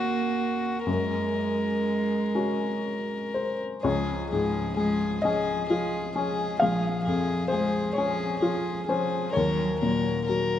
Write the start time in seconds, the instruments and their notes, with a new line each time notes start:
Already playing: felt piano D#2 C#4 F#4, cello A#3, violin F#4
0.86 felt piano F#2, cello G#3, violin A#4
2.35 felt piano C#4 F#4
3.34 felt piano C5
3.83 felt piano C#2 C#5, cello F3, violin G#4
4.31 felt piano G#2, cello F3, violin G#4
4.77 cello F3, felt piano G#3, violin G#4
5.22 cello F3, felt piano C#4 D#5, violin G#4
5.70 cello F3, felt piano F4, violin G#4
6.14 cello F3, felt piano C#4, violin G#4
6.60 felt piano A#1 F5, cello F3, violin G#4
7.03 felt piano F2, cello F3, violin G#4
7.48 cello F3, violin G#4, felt piano C5
7.52 felt piano G#3
7.93 cello F3, violin G#4, felt piano C#5
7.98 felt piano C#4
8.41 cello F3, felt piano F4, violin G#4
8.87 cello F3, felt piano C#4 C5, violin G#4
9.33 felt piano D#2 C#5, cello F#3, violin A#4
9.80 felt piano A#2, cello F#3, violin A#4
10.26 cello F#3, felt piano F#3, violin A#4